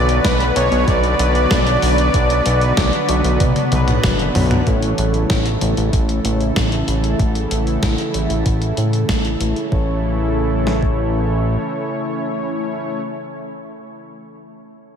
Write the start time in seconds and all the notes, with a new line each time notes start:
Already playing: B1 D3 F#3 B3 D4 F#4 B4 D5
0.09 closed hi-hat
0.24 B1 B4, kick, snare, closed hi-hat
0.40 closed hi-hat
0.56 B1 C#5, closed hi-hat
0.72 B1, closed hi-hat
0.88 B1 D5, kick, closed hi-hat
1.04 closed hi-hat
1.19 B1 F#3 B3 D4 B4, closed hi-hat
1.35 closed hi-hat
1.51 B1, kick, snare, closed hi-hat
1.67 closed hi-hat
1.82 B1, open hi-hat
1.98 closed hi-hat
2.14 B1 F#3 B3 D4 D5, kick, closed hi-hat
2.30 closed hi-hat
2.46 B1, closed hi-hat
2.61 closed hi-hat
2.77 B1, kick, snare, closed hi-hat
2.93 closed hi-hat
3.09 B1, closed hi-hat
3.24 B1, closed hi-hat
3.40 B1, kick, closed hi-hat, high tom
3.56 closed hi-hat, high tom
3.72 B1 F#3 B3 D4 B4, closed hi-hat, high tom
3.88 closed hi-hat, mid tom
4.04 F#1, kick, snare, closed hi-hat, mid tom
4.19 closed hi-hat
4.35 B1, mid tom, open hi-hat
4.51 closed hi-hat, mid tom
4.67 A1 C#3 E3 A3 C#4 E4 A4 C#5, kick, closed hi-hat
4.82 closed hi-hat
4.98 A1, closed hi-hat
5.14 closed hi-hat
5.30 A1, kick, snare, closed hi-hat
5.46 closed hi-hat
5.61 A1, closed hi-hat
5.77 A1, closed hi-hat
5.93 A1, kick, closed hi-hat
6.09 closed hi-hat
6.25 A1 A3 C#4 E4 C#5, closed hi-hat
6.41 closed hi-hat
6.56 A1, kick, snare, closed hi-hat
6.72 closed hi-hat
6.88 A1, closed hi-hat
7.04 closed hi-hat
7.19 A1 A3 C#4 E4 F#5, kick, closed hi-hat
7.35 closed hi-hat
7.51 A1, closed hi-hat
7.67 closed hi-hat
7.83 A1, kick, snare, closed hi-hat
7.98 closed hi-hat
8.14 A1, closed hi-hat
8.30 A1, closed hi-hat
8.46 A1, kick, closed hi-hat
8.62 closed hi-hat
8.77 A2 A3 C#4 E4 E5, closed hi-hat
8.93 closed hi-hat
9.09 A1, kick, snare, closed hi-hat
9.25 closed hi-hat
9.40 A1 A3 C#4 E4 C#5, closed hi-hat
9.56 closed hi-hat
9.72 A1 C#3 E3 A3 C#4 E4 A4 C#5, kick
10.67 snare
10.83 kick